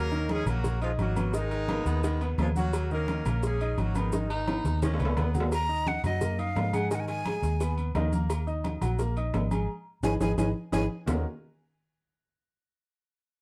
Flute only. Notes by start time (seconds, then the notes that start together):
5.53 A#5
5.88 F#5
6.05 D#5
6.39 F5
6.74 F#5
6.92 G#5
6.96 F#5 G#5
7.08 G#5
10.04 G#5
10.22 G#5
10.38 G#5
10.73 G#5